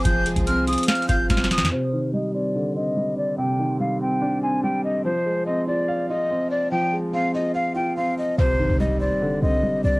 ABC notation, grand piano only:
X:1
M:4/4
L:1/8
Q:1/4=144
K:Cm
V:1 name="Grand piano"
[F,CFf] A, C F f F C2 | C, E, G, C D, C G,2 | C, E, G, C D C G,2 | F, A, C F f F C2 |
F, A, C F f F C2 | C, E, G, C D, C G,2 |]